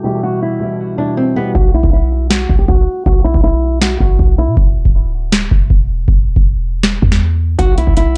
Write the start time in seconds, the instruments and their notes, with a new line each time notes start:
Already playing: grand piano B2 E3 G3 E4
0.03 grand piano B2 E3 G3 E4, nylon-string guitar G4
0.23 nylon-string guitar F#4
0.42 nylon-string guitar E4
0.60 grand piano B2 E3 G3 E4
0.98 grand piano B2 E3 G3 E4, nylon-string guitar D4
1.17 nylon-string guitar C4
1.35 grand piano B2 E3 G3 G4, nylon-string guitar B3
1.55 808-style bass B1, nylon-string guitar F#4, kick
1.74 nylon-string guitar E4
1.83 808-style bass B1, kick
1.93 nylon-string guitar E4
2.30 nylon-string guitar F#4, snare
2.50 808-style bass B1, kick
2.59 nylon-string guitar G4
2.68 808-style bass B1, nylon-string guitar F#4, kick
3.06 808-style bass B1, nylon-string guitar F#4, kick
3.24 nylon-string guitar E4
3.34 808-style bass B1, kick
3.43 nylon-string guitar E4
3.82 nylon-string guitar F#4, snare
4.00 808-style bass A1, nylon-string guitar F#4, kick
4.19 808-style bass B1, kick
4.38 nylon-string guitar E4
4.48 808-style bass B2
4.57 808-style bass E1, kick
4.85 808-style bass D1, kick
5.32 snare
5.51 808-style bass E1, kick
5.70 808-style bass E1, kick
6.08 808-style bass E1, kick
6.36 808-style bass E1, kick
6.83 snare
7.02 808-style bass E2, kick
7.12 snare
7.59 808-style bass B1, nylon-string guitar F#4, kick, closed hi-hat
7.78 nylon-string guitar E4, closed hi-hat
7.87 808-style bass B1, kick
7.97 nylon-string guitar E4, closed hi-hat